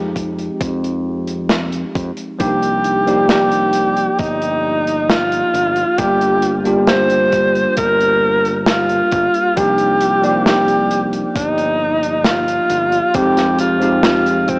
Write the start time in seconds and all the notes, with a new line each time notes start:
Already playing: F2 F3 G#3 C4 D#4 G4
0.16 kick, closed hi-hat
0.39 closed hi-hat
0.61 F2, kick, closed hi-hat
0.84 closed hi-hat
1.28 closed hi-hat
1.50 snare, closed hi-hat
1.72 closed hi-hat
1.95 F2, kick, closed hi-hat
2.17 closed hi-hat
2.39 C2 F3 A#3 D4 D#4 G4, kick, closed hi-hat
2.62 closed hi-hat
2.84 closed hi-hat
3.06 F3 A#3 D#4 G4 D5, closed hi-hat
3.29 G4, snare, closed hi-hat
3.52 closed hi-hat
3.73 closed hi-hat
3.97 closed hi-hat
4.18 G1 D#4, kick, closed hi-hat
4.42 closed hi-hat
4.87 closed hi-hat
5.09 F4, snare, closed hi-hat
5.32 closed hi-hat
5.53 G1, closed hi-hat
5.76 closed hi-hat
5.98 G1 G3 A#3 D4 F4 G4, kick, closed hi-hat
6.21 closed hi-hat
6.42 closed hi-hat
6.64 G3 A#3 D4 F4 G4, closed hi-hat
6.87 C5, snare, closed hi-hat
7.10 closed hi-hat
7.32 kick, closed hi-hat
7.55 closed hi-hat
7.77 G1 A#4, kick, closed hi-hat
8.01 closed hi-hat
8.45 closed hi-hat
8.66 F4, snare, closed hi-hat
8.89 closed hi-hat
9.11 G1, kick, closed hi-hat
9.34 closed hi-hat
9.55 C2 F3 A#3 D4 D#4 G4, kick, closed hi-hat
9.78 closed hi-hat
10.01 closed hi-hat
10.22 F3 A#3 D#4 G4 D5, closed hi-hat
10.46 G4, snare, closed hi-hat
10.68 closed hi-hat
10.91 closed hi-hat
11.13 closed hi-hat
11.36 G1 D#4, kick, closed hi-hat
11.58 closed hi-hat
12.03 closed hi-hat
12.25 F4, snare, closed hi-hat
12.48 closed hi-hat
12.70 G1, closed hi-hat
12.92 closed hi-hat
13.14 F2 F3 G#3 C4 D#4 G4, kick, closed hi-hat
13.37 snare, closed hi-hat
13.59 F4, closed hi-hat
13.80 F3 G#3 C4 D#4 G4, closed hi-hat
14.03 F4, snare, closed hi-hat
14.26 closed hi-hat
14.48 C4, kick, closed hi-hat